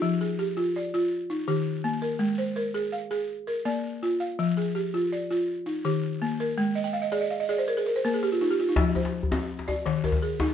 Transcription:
0.02 0.39 F3 medium
0.21 0.75 G#4 soft
0.39 0.93 G4 medium
0.57 0.93 F4 medium
0.76 1.30 D5 medium
0.94 1.12 F4 medium
1.30 1.84 D#4 medium
1.48 1.84 D#3 medium
1.48 2.02 G4 medium
1.84 2.21 A#3 medium
2.02 2.39 A#4 medium
2.19 2.56 G#3 medium
2.38 2.93 C5 medium
2.56 3.11 A#4 medium
2.74 3.10 G#4 medium
2.92 3.48 F5 medium
3.11 3.29 G#4 medium
3.47 4.02 A#4 medium
3.65 4.02 A#3 medium
3.65 4.21 D5 medium
4.03 4.39 F4 medium
4.20 4.57 F5 medium
4.39 4.76 F3 medium
4.57 5.12 G#4 medium
4.75 5.30 G4 medium
4.94 5.29 F4 medium
5.12 5.67 D5 medium
5.31 5.49 F4 medium
5.66 6.21 D#4 medium
5.85 6.21 D#3 medium
5.85 6.40 G4 medium
6.22 6.58 A#3 medium
6.40 6.76 A#4 medium
6.58 6.94 G#3 medium
6.75 6.93 D#5 medium
6.84 7.02 G5 medium
6.93 7.11 F5 medium
7.02 7.20 D#5 medium
7.12 7.48 G#4 medium
7.12 7.29 D5 medium
7.21 7.38 D#5 medium
7.30 7.48 F5 medium
7.40 7.57 D#5 medium
7.49 7.67 G#4 medium
7.49 7.66 D5 medium
7.58 7.75 C5 medium
7.68 7.85 A#4 medium
7.77 7.94 G#4 medium
7.86 8.03 A#4 medium
7.96 8.12 C5 medium
8.04 8.41 A#3 medium
8.04 8.21 A#4 medium
8.14 8.30 G#4 medium
8.23 8.39 G4 medium
8.32 8.40 F4 medium
8.41 8.58 D#4 medium
8.41 8.58 F4 medium
8.51 8.67 G4 medium
8.59 8.76 F4 medium
8.69 8.85 D#4 medium
8.76 9.14 F3 medium
8.76 djembe slap medium
8.76 djembe bass medium
8.95 9.50 C5 medium
8.95 djembe tone medium
9.05 djembe slap medium
9.23 djembe bass medium
9.32 9.68 C4 medium
9.32 djembe slap medium
9.32 djembe tone medium
9.59 djembe slap soft
9.68 10.04 D5 medium
9.68 djembe tone medium
9.86 10.22 D#3 medium
9.86 djembe slap medium
10.04 10.54 A#4 medium
10.04 djembe tone medium
10.12 djembe slap soft
10.12 djembe bass soft
10.21 10.54 G#4 medium
10.21 djembe slap soft
10.40 10.54 D#4 medium
10.40 djembe slap medium
10.40 djembe tone medium
10.49 djembe slap soft

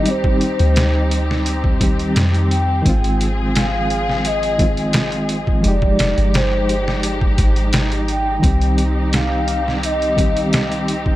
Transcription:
0.00 0.56 C2 loud
0.00 1.80 D#3 medium
0.00 0.06 G3 medium
0.00 0.08 C4 medium
0.00 5.61 C4 medium
0.00 2.82 D#4 medium
0.00 1.75 D#4 medium
0.00 0.11 G4 medium
0.00 2.82 G4 medium
0.00 0.10 D#5 loud
0.06 1.76 G3 medium
0.06 1.77 C4 medium
0.06 1.47 C5 loud
0.06 closed hi-hat medium
0.11 1.79 G4 medium
0.24 kick loud
0.41 closed hi-hat medium
0.59 2.16 D2 medium
0.59 closed hi-hat soft
0.76 snare loud
0.76 closed hi-hat medium
1.11 closed hi-hat medium
1.31 snare medium
1.46 closed hi-hat medium
1.64 kick medium
1.80 2.05 D#3 medium
1.80 2.06 G3 medium
1.80 2.07 C4 medium
1.80 2.07 G4 medium
1.80 kick loud
1.80 closed hi-hat medium
1.99 closed hi-hat soft
2.16 2.82 F2 medium
2.16 snare loud
2.16 closed hi-hat medium
2.34 closed hi-hat soft
2.51 3.17 G5 loud
2.51 closed hi-hat medium
2.82 4.54 D#3 medium
2.82 5.61 F3 medium
2.82 4.55 G#3 medium
2.82 5.61 G#4 medium
2.82 kick loud
2.82 closed hi-hat medium
2.86 5.61 G#1 loud
2.86 4.56 C4 medium
2.86 4.58 F4 medium
3.04 closed hi-hat soft
3.21 closed hi-hat medium
3.55 4.28 F5 loud
3.55 snare loud
3.55 closed hi-hat medium
3.90 closed hi-hat medium
4.09 snare soft
4.25 5.30 D#5 loud
4.25 closed hi-hat medium
4.43 closed hi-hat soft
4.59 4.84 D#3 medium
4.59 4.85 G#3 medium
4.59 4.86 C4 medium
4.59 4.86 F4 medium
4.59 kick loud
4.59 closed hi-hat medium
4.77 closed hi-hat soft
4.93 snare loud
4.93 closed hi-hat medium
5.12 closed hi-hat soft
5.29 closed hi-hat medium
5.47 kick medium
5.60 7.33 F3 medium
5.60 7.34 G#3 medium
5.60 8.40 G#3 medium
5.60 11.16 D#4 medium
5.60 8.40 G4 medium
5.60 closed hi-hat medium
5.65 6.14 F1 loud
5.65 7.35 D#4 medium
5.65 7.36 G4 medium
5.65 6.37 D5 loud
5.82 kick loud
5.99 snare loud
5.99 closed hi-hat medium
6.18 7.38 G1 medium
6.18 closed hi-hat soft
6.34 7.04 C5 loud
6.34 snare loud
6.34 closed hi-hat medium
6.69 closed hi-hat medium
6.88 snare medium
7.03 closed hi-hat medium
7.21 kick loud
7.38 8.40 G#1 medium
7.38 kick loud
7.38 closed hi-hat medium
7.56 closed hi-hat soft
7.73 snare loud
7.73 closed hi-hat medium
7.92 closed hi-hat soft
8.08 8.75 G5 loud
8.08 closed hi-hat medium
8.39 10.11 D#3 medium
8.39 10.13 G3 medium
8.39 11.16 C4 medium
8.39 kick loud
8.43 11.16 C2 loud
8.43 10.14 C4 medium
8.43 11.16 G4 medium
8.43 10.15 G4 medium
8.43 closed hi-hat medium
8.61 closed hi-hat soft
8.78 closed hi-hat medium
9.13 9.79 F5 loud
9.13 snare loud
9.13 closed hi-hat medium
9.48 closed hi-hat medium
9.68 snare soft
9.83 10.84 D#5 loud
9.83 closed hi-hat medium
10.02 closed hi-hat soft
10.16 10.42 D#3 medium
10.16 10.43 G3 medium
10.16 10.44 C4 medium
10.16 10.44 G4 medium
10.16 kick loud
10.16 closed hi-hat medium
10.37 closed hi-hat soft
10.53 snare loud
10.53 closed hi-hat medium
10.72 closed hi-hat soft
10.88 closed hi-hat medium
11.06 kick medium

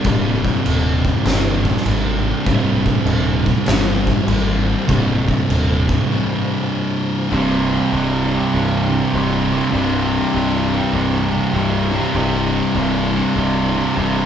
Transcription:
0.00 7.27 C3 medium
0.00 2.44 G3 medium
0.00 7.28 D4 medium
0.04 0.51 C1 loud
0.04 1.24 C2 loud
0.04 2.44 C2 medium
0.04 1.25 G2 loud
0.04 2.46 G2 medium
0.04 1.27 C3 loud
0.04 2.48 C3 medium
0.04 kick loud
0.04 crash medium
0.45 kick medium
0.66 1.11 D#1 medium
0.66 crash medium
1.05 kick medium
1.25 1.71 G1 loud
1.25 2.45 C2 medium
1.25 2.46 G2 medium
1.25 2.48 C3 medium
1.25 snare loud
1.25 crash medium
1.65 kick medium
1.77 snare soft
1.85 2.31 G#1 loud
1.85 crash medium
2.44 2.92 C1 medium
2.44 4.87 C2 loud
2.44 3.66 C2 loud
2.44 3.67 G2 loud
2.44 4.88 G2 medium
2.44 7.27 F3 medium
2.44 kick loud
2.44 crash medium
2.48 3.69 C3 loud
2.48 4.90 C3 loud
2.86 kick medium
3.05 3.51 D#1 medium
3.05 crash medium
3.46 kick medium
3.66 4.13 G1 medium
3.66 4.88 C2 medium
3.66 4.88 G2 medium
3.66 4.91 C3 medium
3.66 snare loud
3.66 crash medium
4.07 kick medium
4.27 4.73 G#1 loud
4.27 crash medium
4.87 5.34 C1 loud
4.87 7.29 C2 medium
4.87 6.08 C2 medium
4.87 7.30 G2 loud
4.87 6.09 G2 medium
4.87 7.31 C3 loud
4.87 kick loud
4.87 crash medium
4.92 6.10 C3 loud
5.29 kick medium
5.49 5.95 D#1 medium
5.49 crash medium
5.89 kick medium
6.09 7.29 C2 medium
6.09 7.30 G2 medium
6.09 7.31 C3 medium
7.30 7.77 C1 loud
7.30 9.53 C2 loud
7.30 7.91 C2 medium
7.30 7.91 G2 loud
7.30 9.50 G2 loud
7.30 14.26 C3 medium
7.30 7.92 C3 loud
7.30 9.50 C3 loud
7.30 14.26 G3 medium
7.30 14.26 D4 medium
7.91 8.37 C1 medium
7.91 8.31 C2 medium
7.91 8.30 G2 loud
7.91 8.31 C3 loud
8.31 8.52 C2 medium
8.31 8.53 G2 medium
8.31 8.53 C3 medium
8.53 8.98 C1 medium
8.53 9.13 C2 loud
8.53 9.14 G2 loud
8.53 9.15 C3 loud
8.89 9.11 G2 medium
8.89 9.13 C3 medium
8.94 9.10 C2 medium
9.13 9.58 C1 loud
9.13 9.53 C2 medium
9.13 9.52 G2 medium
9.13 9.53 C3 medium
9.51 9.72 C2 loud
9.51 9.70 C2 medium
9.51 9.72 G2 medium
9.51 9.74 C3 medium
9.51 9.74 C3 loud
9.70 10.18 C1 medium
9.70 11.94 C2 medium
9.70 10.33 C2 loud
9.70 11.92 G2 loud
9.70 10.32 G2 loud
9.70 11.91 C3 loud
9.70 10.33 C3 loud
10.33 10.79 C1 loud
10.33 10.72 C2 medium
10.33 10.72 G2 medium
10.33 10.73 C3 medium
10.73 10.94 C2 medium
10.73 10.93 G2 medium
10.73 10.94 C3 loud
10.93 11.39 C1 medium
10.93 11.53 C2 loud
10.93 11.53 G2 loud
10.93 11.54 C3 loud
11.31 11.52 G2 medium
11.31 11.54 C3 medium
11.35 11.51 C2 medium
11.53 11.99 C1 loud
11.53 11.92 C2 medium
11.53 11.91 G2 medium
11.53 11.92 C3 medium
11.91 12.14 C2 loud
11.91 12.11 C2 medium
11.91 12.13 G2 loud
11.91 12.12 G2 medium
11.91 12.15 C3 medium
11.91 12.15 C3 loud
12.12 12.60 C1 loud
12.12 14.26 C2 loud
12.12 12.75 C2 loud
12.12 14.26 G2 medium
12.12 12.75 G2 loud
12.12 14.26 C3 loud
12.12 12.76 C3 loud
12.75 13.20 C1 medium
12.75 13.13 C2 medium
12.75 13.13 G2 medium
12.75 13.14 C3 medium
13.14 13.34 C2 medium
13.14 13.33 G2 medium
13.14 13.35 C3 medium
13.34 13.81 C1 medium
13.34 13.95 C2 loud
13.34 13.95 G2 loud
13.34 13.96 C3 loud
13.74 13.95 G2 medium
13.74 13.98 C3 loud
13.78 13.95 C2 medium
13.95 14.26 C1 loud
13.95 14.26 C2 loud
13.95 14.26 G2 medium
13.95 14.26 C3 loud

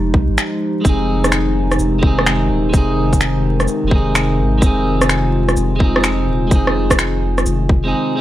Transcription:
0.00 0.15 F1 loud
0.00 0.81 F3 medium
0.00 7.89 G#3 medium
0.00 4.59 D#4 medium
0.00 0.81 G4 medium
0.14 0.28 C2 loud
0.14 kick loud
0.29 0.37 G#1 medium
0.38 finger snap loud
0.38 shaker medium
0.81 1.78 F1 loud
0.81 7.90 C3 medium
0.81 1.98 G#3 medium
0.81 2.01 C4 medium
0.81 kick loud
0.81 shaker medium
0.86 7.90 D#3 medium
0.86 2.02 D#4 medium
0.86 2.03 G#4 medium
1.24 cross-stick medium
1.24 shaker soft
1.32 finger snap medium
1.32 shaker soft
1.72 cross-stick medium
1.72 shaker soft
1.79 2.49 F1 medium
1.79 shaker soft
1.99 2.68 G#3 medium
1.99 2.71 C4 medium
1.99 kick loud
2.04 2.73 D#4 medium
2.04 2.74 G#4 medium
2.19 cross-stick medium
2.26 finger snap loud
2.26 shaker medium
2.50 2.72 D#1 loud
2.69 3.87 G#3 medium
2.69 3.89 C4 medium
2.73 3.67 F1 loud
2.73 3.90 D#4 medium
2.73 3.92 G#4 loud
2.73 kick loud
2.73 shaker soft
3.13 kick medium
3.13 shaker medium
3.21 finger snap medium
3.21 shaker soft
3.60 cross-stick soft
3.60 shaker soft
3.68 shaker medium
3.84 4.40 F1 medium
3.88 4.57 G#3 medium
3.88 4.60 C4 medium
3.88 kick loud
3.93 4.61 D#4 medium
3.93 4.63 G#4 medium
4.15 finger snap loud
4.15 shaker medium
4.39 4.61 G#1 loud
4.58 5.56 F1 loud
4.58 5.75 G#3 medium
4.58 5.78 C4 medium
4.58 kick loud
4.62 5.79 D#4 medium
4.62 7.90 F4 medium
4.62 shaker medium
4.66 5.81 G#4 loud
5.01 cross-stick medium
5.01 shaker medium
5.09 finger snap medium
5.09 shaker medium
5.49 cross-stick medium
5.49 shaker soft
5.57 6.27 F1 medium
5.57 shaker soft
5.76 6.46 G#3 medium
5.76 6.49 C4 medium
5.80 6.50 D#4 medium
5.80 kick loud
5.84 6.51 G#4 medium
5.96 cross-stick medium
6.04 finger snap medium
6.04 shaker medium
6.28 6.50 D#1 loud
6.47 7.45 F1 loud
6.47 7.66 G#3 medium
6.47 7.67 C4 medium
6.47 kick loud
6.47 shaker medium
6.53 7.68 D#4 medium
6.53 7.70 G#4 loud
6.67 cross-stick medium
6.90 kick medium
6.90 cross-stick medium
6.90 shaker medium
6.99 finger snap loud
6.99 shaker medium
7.38 cross-stick medium
7.38 shaker soft
7.46 7.93 F1 medium
7.46 shaker medium
7.69 kick loud
7.84 8.14 G#3 medium
7.84 8.15 C4 medium
7.84 8.16 D#4 medium
7.88 8.16 G#4 medium
8.16 8.21 G#3 medium
8.16 8.21 C4 medium

